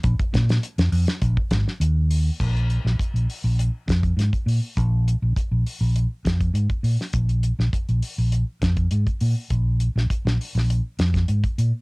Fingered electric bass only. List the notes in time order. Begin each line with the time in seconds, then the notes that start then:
0.04 A#1
0.34 A#2
0.78 F2
0.92 F2
1.22 A#1
1.51 G#1
1.80 D#2
2.40 A#1
2.85 A#1
3.14 A#1
3.44 A#1
3.88 F2
4.17 G#2
4.46 A#2
4.77 A#1
5.22 A#1
5.51 A#1
5.81 A#1
6.25 F2
6.54 G#2
6.83 A#2
7.14 A#1
7.59 A#1
7.89 A#1
8.18 A#1
8.62 F2
8.91 G#2
9.21 A#2
9.50 A#1
9.96 A#1
10.25 A#1
10.55 A#1
10.99 F2
11.28 G#2
11.58 A#2